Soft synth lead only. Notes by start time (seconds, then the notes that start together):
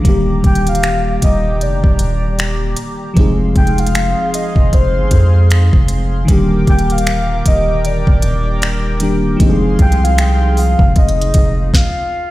0.46 G5
0.69 F5
1.24 D#5
1.62 D5
3.57 G5
3.80 F5
4.35 D#5
4.74 C5
6.69 G5
6.92 F5
7.48 D#5
7.86 D5
9.81 G5
10.04 F5
10.20 G5
10.59 F5
10.98 D#5
11.76 F5